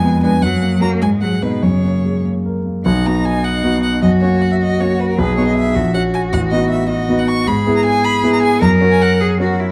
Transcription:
0.00 0.40 F2 medium
0.00 0.22 G#3 medium
0.00 0.34 B3 medium
0.00 0.22 G#5 loud
0.22 0.30 G#3 medium
0.22 0.40 D4 medium
0.22 0.41 B4 medium
0.22 0.44 G#5 loud
0.42 1.00 F#2 medium
0.42 0.82 F#3 medium
0.42 0.81 F#5 loud
0.62 0.93 A#3 medium
0.81 1.02 A#3 medium
0.81 0.99 C#4 medium
0.81 0.99 F#4 medium
0.81 0.90 A#5 loud
1.01 1.61 G#2 medium
1.01 1.23 G#3 medium
1.01 1.10 G#5 medium
1.22 1.42 F#3 medium
1.22 1.55 G#3 medium
1.22 1.44 F#5 medium
1.42 1.64 B2 medium
1.42 1.61 B3 soft
1.42 1.61 D#4 soft
1.42 1.64 B4 medium
1.62 2.82 F#2 medium
1.62 2.24 C#3 medium
1.62 2.24 C#5 medium
1.84 2.16 A#3 soft
2.05 2.25 G#3 soft
2.25 2.57 A#3 soft
2.46 2.78 A#4 medium
2.66 2.86 A#3 soft
2.85 3.05 B1 medium
2.85 3.99 D#4 medium
2.85 3.08 F#5 medium
3.05 3.60 B3 medium
3.05 3.60 D#4 medium
3.05 3.60 F#4 medium
3.05 3.27 A#5 medium
3.25 3.46 G#5 loud
3.44 3.82 F#5 loud
3.64 3.99 B3 medium
3.64 3.99 D#4 medium
3.64 4.00 F#4 medium
3.83 4.02 F#5 medium
4.02 4.22 F#2 medium
4.02 5.16 F#4 medium
4.02 4.10 D#5 medium
4.21 4.76 A#3 medium
4.21 4.76 C#4 medium
4.21 4.76 F#4 medium
4.21 4.43 C#5 medium
4.41 4.51 F#5 medium
4.52 4.56 E5 medium
4.61 4.82 D#5 loud
4.80 5.14 A#3 medium
4.80 5.15 C#4 medium
4.80 5.15 F#4 medium
4.80 5.01 C#5 loud
5.00 5.09 B4 medium
5.10 5.20 A#4 medium
5.18 5.37 B1 medium
5.18 5.77 G#4 medium
5.18 5.37 B4 loud
5.37 5.72 B3 medium
5.37 5.72 D#4 medium
5.37 5.72 F#4 medium
5.37 5.46 C#5 medium
5.47 5.55 D#5 medium
5.56 5.93 E5 loud
5.75 5.94 A#1 medium
5.75 6.88 F#4 medium
5.94 6.29 C#4 medium
5.94 6.29 F#4 medium
5.94 6.02 F#5 loud
6.14 6.21 G#5 loud
6.33 6.51 A1 medium
6.33 6.40 F#5 loud
6.51 7.05 B3 medium
6.51 7.05 D#4 medium
6.51 7.05 F#4 medium
6.51 6.70 D#5 loud
6.70 6.89 E5 loud
6.89 7.48 F#4 medium
6.89 7.20 D#5 loud
7.09 7.43 B3 medium
7.09 7.43 D#4 medium
7.09 7.43 F#4 medium
7.19 7.30 F#5 medium
7.28 7.49 C#6 loud
7.47 7.65 G#2 medium
7.47 8.62 G#4 loud
7.47 7.76 B5 loud
7.66 8.20 B3 medium
7.66 8.20 E4 medium
7.66 8.20 G#4 medium
7.76 7.85 A#5 loud
7.85 8.06 G#5 loud
8.04 8.32 B5 loud
8.23 8.58 B3 medium
8.23 8.59 E4 medium
8.23 8.59 G#4 medium
8.33 8.42 A#5 loud
8.43 8.61 G#5 loud
8.61 8.81 F#2 medium
8.61 9.22 A#4 loud
8.61 8.70 A#5 loud
8.81 9.36 C#4 medium
8.81 9.36 F#4 medium
8.81 9.37 A#4 medium
8.91 9.03 G#5 loud
9.02 9.21 F#5 loud
9.20 9.39 G#4 loud
9.40 9.72 C#4 medium
9.40 9.61 F#4 medium
9.40 9.72 F#4 medium
9.40 9.72 A#4 medium
9.60 9.72 E4 medium

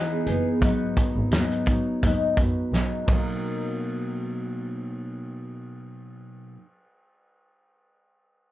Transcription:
0.00 0.26 E3 medium
0.00 0.27 B3 medium
0.00 0.27 D#4 medium
0.00 0.25 G#4 medium
0.11 0.26 B3 medium
0.11 0.26 G#4 medium
0.26 0.35 F#1 medium
0.26 0.63 B3 soft
0.26 0.62 D#4 soft
0.26 0.46 D#4 medium
0.26 0.61 G#4 medium
0.26 0.45 B4 medium
0.26 closed hi-hat medium
0.47 0.80 B3 medium
0.47 0.80 G#4 medium
0.62 0.70 G#1 medium
0.62 0.97 G#2 medium
0.62 0.98 F#3 medium
0.62 0.98 B3 medium
0.62 0.97 D#4 medium
0.62 kick medium
0.62 closed hi-hat medium
0.97 1.33 B3 medium
0.97 1.33 D#4 soft
0.97 kick medium
0.97 closed hi-hat medium
1.01 1.32 F#3 soft
1.16 1.24 G#1 medium
1.32 1.40 D#2 medium
1.32 1.68 G#2 medium
1.32 1.68 F#3 medium
1.32 1.68 B3 medium
1.32 snare loud
1.32 closed hi-hat medium
1.36 1.67 D#4 medium
1.52 closed hi-hat soft
1.66 1.75 G#2 medium
1.66 2.03 B3 soft
1.66 2.03 D#4 medium
1.66 kick medium
1.66 closed hi-hat medium
1.71 2.04 F#3 soft
2.03 2.11 D#2 medium
2.03 2.39 G#2 medium
2.03 2.39 F#3 medium
2.03 2.39 B3 medium
2.03 2.38 D#4 medium
2.03 kick medium
2.03 closed hi-hat medium
2.37 2.45 F#2 medium
2.37 2.74 B3 soft
2.37 2.74 D#4 soft
2.37 kick medium
2.37 closed hi-hat medium
2.42 2.73 F#3 soft
2.72 2.80 B1 medium
2.72 3.08 G#2 medium
2.72 3.08 F#3 medium
2.72 3.09 B3 medium
2.72 3.09 D#4 medium
2.72 snare soft
3.06 3.16 B1 medium
3.06 6.56 B2 medium
3.06 6.59 F#3 medium
3.06 kick medium
3.06 ride medium
3.12 6.62 A#3 medium
3.12 6.64 D#4 medium

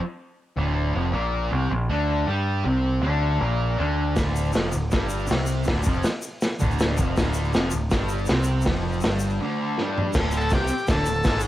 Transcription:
0.56 0.92 D1 medium
0.56 0.94 D2 medium
0.56 0.94 D3 medium
0.94 1.13 F1 medium
0.94 1.12 F2 medium
0.94 1.13 F3 loud
1.13 1.49 A#1 medium
1.13 1.51 A#2 medium
1.13 1.51 A#3 loud
1.52 1.70 C2 medium
1.52 1.71 C3 medium
1.52 1.71 C4 loud
1.71 1.88 A#1 medium
1.71 1.86 A#2 medium
1.90 2.25 D2 medium
1.90 2.27 D3 medium
1.90 2.28 D4 medium
2.27 2.63 G2 medium
2.27 2.65 G3 medium
2.27 2.65 G4 loud
2.64 3.01 C2 medium
2.64 3.02 C3 medium
2.64 3.03 C4 medium
3.02 3.38 D2 medium
3.02 3.40 D3 medium
3.02 3.40 D4 medium
3.39 3.76 A#1 medium
3.39 3.77 A#2 medium
3.39 3.78 A#3 medium
3.78 4.14 D2 medium
3.78 4.14 D3 medium
3.78 4.16 D4 loud
4.15 4.52 D1 medium
4.15 4.53 D2 medium
4.15 4.53 D3 medium
4.15 kick loud
4.15 snare loud
4.15 open hi-hat soft
4.15 shaker medium
4.36 shaker medium
4.45 shaker soft
4.53 4.72 F1 medium
4.53 4.72 F2 medium
4.53 4.72 F3 medium
4.53 snare loud
4.53 open hi-hat medium
4.53 shaker medium
4.72 4.91 D1 medium
4.72 4.88 D2 medium
4.72 shaker medium
4.91 5.27 G1 medium
4.91 5.27 G2 medium
4.91 5.28 G3 medium
4.91 kick loud
4.91 snare medium
4.91 open hi-hat medium
4.91 shaker medium
5.09 shaker medium
5.19 shaker soft
5.27 5.65 C2 medium
5.27 5.65 C3 medium
5.27 5.66 C4 loud
5.27 shaker medium
5.31 snare loud
5.31 open hi-hat medium
5.46 shaker loud
5.64 5.85 D2 medium
5.64 5.86 D3 medium
5.64 shaker medium
5.68 5.85 D1 medium
5.68 kick loud
5.68 snare loud
5.68 open hi-hat medium
5.83 6.03 F1 loud
5.83 6.04 F2 medium
5.83 6.04 F3 loud
5.83 kick loud
5.83 shaker loud
6.03 snare loud
6.03 open hi-hat medium
6.03 shaker medium
6.22 shaker medium
6.41 snare loud
6.41 open hi-hat medium
6.41 shaker medium
6.59 6.96 D1 medium
6.59 6.97 D2 loud
6.59 6.97 D3 medium
6.59 kick medium
6.59 shaker loud
6.71 shaker soft
6.79 snare loud
6.79 open hi-hat medium
6.79 shaker medium
6.97 7.16 F1 medium
6.97 7.16 F2 medium
6.97 7.17 F3 loud
6.97 kick medium
6.97 shaker medium
7.16 7.52 D1 medium
7.16 7.53 D2 medium
7.16 7.54 D3 medium
7.16 kick loud
7.16 snare loud
7.16 open hi-hat medium
7.16 shaker medium
7.34 shaker loud
7.44 shaker soft
7.53 7.72 F1 medium
7.53 7.72 F2 medium
7.53 7.72 F3 medium
7.53 snare loud
7.53 open hi-hat soft
7.53 shaker medium
7.71 7.90 D1 medium
7.71 7.88 D2 medium
7.71 shaker medium
7.90 8.26 G1 medium
7.90 8.28 G2 medium
7.90 8.28 G3 medium
7.90 kick loud
7.90 snare loud
7.90 open hi-hat medium
7.90 shaker medium
8.09 shaker medium
8.18 shaker soft
8.26 8.65 C3 medium
8.26 8.66 C4 loud
8.26 snare loud
8.26 open hi-hat soft
8.26 shaker medium
8.30 8.64 C2 medium
8.44 shaker medium
8.62 9.04 F2 medium
8.62 shaker medium
8.66 9.01 F1 medium
8.66 9.04 F3 medium
8.66 kick loud
8.66 snare loud
8.66 open hi-hat medium
8.92 shaker soft
9.01 9.38 G1 medium
9.01 9.40 G2 medium
9.01 9.40 G3 medium
9.01 snare loud
9.01 open hi-hat medium
9.01 shaker medium
9.19 shaker medium
9.30 shaker soft
9.41 9.77 D2 medium
9.41 9.78 D3 medium
9.78 10.15 G2 medium
9.78 10.15 G3 loud
9.78 snare medium
9.98 floor tom medium
10.13 10.49 D1 medium
10.13 10.52 D2 medium
10.13 10.52 D3 loud
10.13 kick loud
10.13 snare loud
10.13 crash loud
10.13 shaker medium
10.31 shaker medium
10.37 10.53 A4 loud
10.37 shaker soft
10.49 10.69 C2 medium
10.49 10.70 C3 medium
10.49 10.70 C4 medium
10.49 kick loud
10.49 snare loud
10.49 open hi-hat medium
10.49 shaker medium
10.54 10.88 G4 loud
10.67 muted distorted electric guitar stroke medium
10.67 muted picked electric bass stroke soft
10.67 shaker medium
10.78 shaker soft
10.87 11.05 D1 medium
10.87 11.06 D2 medium
10.87 11.06 D3 loud
10.87 kick loud
10.87 snare loud
10.87 open hi-hat medium
10.87 shaker medium
10.91 11.42 A4 loud
11.06 11.24 D1 medium
11.06 11.22 D2 medium
11.06 shaker medium
11.24 11.47 G#1 medium
11.24 11.47 G#2 loud
11.24 11.47 G#3 loud
11.24 kick loud
11.24 snare loud
11.24 open hi-hat medium
11.24 shaker medium
11.40 shaker medium

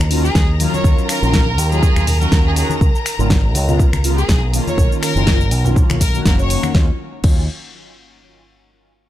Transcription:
0.00 0.28 D#2 medium
0.00 6.76 A#4 medium
0.00 6.76 A#5 medium
0.00 shaker soft
0.10 0.25 D#3 medium
0.10 0.25 F#3 medium
0.10 0.25 C#4 medium
0.10 0.26 F4 loud
0.10 open hi-hat loud
0.10 shaker medium
0.24 0.44 G#4 medium
0.24 shaker soft
0.35 0.65 D#2 loud
0.35 kick loud
0.35 snare loud
0.35 shaker soft
0.59 1.19 D#3 medium
0.59 1.19 F#3 medium
0.59 1.19 C#4 medium
0.59 1.20 F4 loud
0.59 open hi-hat loud
0.59 shaker medium
0.73 0.93 C#5 loud
0.73 high conga medium
0.73 shaker soft
0.84 0.93 D#2 loud
0.84 kick loud
0.84 shaker soft
0.98 shaker soft
1.09 1.69 A#4 loud
1.09 finger snap medium
1.09 open hi-hat loud
1.09 shaker medium
1.22 1.58 A#1 medium
1.22 1.44 D#3 loud
1.22 1.44 F#3 medium
1.22 1.44 C#4 medium
1.22 1.44 F4 loud
1.22 shaker soft
1.33 kick loud
1.33 snare loud
1.33 high conga medium
1.33 shaker soft
1.58 1.88 D#2 medium
1.58 open hi-hat loud
1.58 shaker medium
1.71 2.04 D#3 medium
1.71 2.05 F#3 medium
1.71 2.05 C#4 medium
1.71 2.05 F4 medium
1.71 2.18 G#4 loud
1.71 shaker soft
1.83 kick loud
1.83 shaker soft
1.96 2.25 D#2 medium
1.96 finger snap medium
1.96 high conga medium
1.96 shaker soft
2.07 open hi-hat loud
2.07 low conga medium
2.07 shaker medium
2.20 2.79 D#3 medium
2.20 2.79 F#3 medium
2.20 2.80 C#4 medium
2.20 2.80 F#4 medium
2.20 2.41 A#4 medium
2.20 shaker soft
2.32 2.62 D#2 loud
2.32 kick loud
2.32 snare loud
2.32 shaker soft
2.46 2.53 G#4 medium
2.56 2.65 G#4 medium
2.56 open hi-hat loud
2.56 shaker medium
2.70 high conga medium
2.70 shaker soft
2.81 2.90 C#2 loud
2.81 kick loud
2.81 shaker soft
2.95 shaker soft
3.06 finger snap medium
3.06 open hi-hat loud
3.06 shaker medium
3.18 3.55 G#1 loud
3.18 3.31 C#3 medium
3.18 3.32 G#3 medium
3.18 3.32 B3 medium
3.18 3.32 F4 loud
3.18 shaker soft
3.30 kick loud
3.30 snare loud
3.30 high conga medium
3.30 shaker soft
3.55 3.85 C#2 medium
3.55 open hi-hat loud
3.55 shaker medium
3.67 3.90 C#3 medium
3.67 3.90 G#3 medium
3.67 3.90 B3 medium
3.67 3.90 F4 loud
3.67 low conga medium
3.67 shaker soft
3.79 kick loud
3.79 shaker soft
3.93 4.22 C#2 medium
3.93 finger snap medium
3.93 high conga medium
3.93 shaker soft
4.04 4.19 C#3 medium
4.04 4.19 G#3 medium
4.04 4.19 B3 medium
4.04 4.19 F4 loud
4.04 open hi-hat loud
4.04 shaker medium
4.18 4.38 G#4 medium
4.18 shaker soft
4.29 4.59 B1 loud
4.29 kick loud
4.29 snare loud
4.29 shaker soft
4.52 5.12 D#3 medium
4.52 5.13 A#3 medium
4.52 5.13 C#4 medium
4.52 5.13 F4 loud
4.52 open hi-hat loud
4.52 shaker medium
4.67 4.87 C#5 loud
4.67 high conga medium
4.67 shaker soft
4.78 4.86 B1 loud
4.78 kick loud
4.78 shaker soft
4.92 shaker soft
5.02 5.62 A#4 loud
5.02 finger snap medium
5.02 open hi-hat loud
5.02 shaker medium
5.15 5.52 F#1 loud
5.15 5.37 D#3 medium
5.15 5.37 A#3 medium
5.15 5.38 C#4 medium
5.15 5.38 F4 loud
5.15 shaker soft
5.27 kick loud
5.27 snare loud
5.27 high conga medium
5.27 shaker soft
5.41 shaker soft
5.51 5.82 B1 medium
5.51 open hi-hat loud
5.51 shaker medium
5.64 5.98 D#3 medium
5.64 5.98 A#3 medium
5.64 5.98 C#4 medium
5.64 5.98 F4 medium
5.64 low conga medium
5.64 shaker soft
5.76 kick loud
5.76 shaker medium
5.90 6.19 B1 medium
5.90 finger snap medium
5.90 high conga medium
5.90 shaker soft
6.01 6.22 A#4 loud
6.01 kick medium
6.01 open hi-hat loud
6.01 low conga medium
6.01 shaker medium
6.13 6.72 D#3 medium
6.13 6.73 A#3 medium
6.13 6.73 C#4 medium
6.13 6.74 F#4 loud
6.13 shaker soft
6.25 6.55 F#1 medium
6.25 6.36 A#4 medium
6.25 kick loud
6.25 snare loud
6.25 shaker soft
6.39 6.75 C#5 medium
6.39 shaker soft
6.50 open hi-hat loud
6.50 shaker medium
6.63 finger snap medium
6.63 high conga medium
6.63 shaker soft
6.73 6.89 D#2 loud
6.73 6.88 D#3 medium
6.73 6.89 F#3 medium
6.73 6.89 C#4 medium
6.73 6.90 F4 loud
6.73 kick loud
6.73 snare medium
7.22 7.47 D#2 loud
7.22 7.42 D#3 medium
7.22 7.42 F#3 medium
7.22 7.43 C#4 medium
7.22 7.43 F4 loud
7.22 kick loud
7.22 crash medium

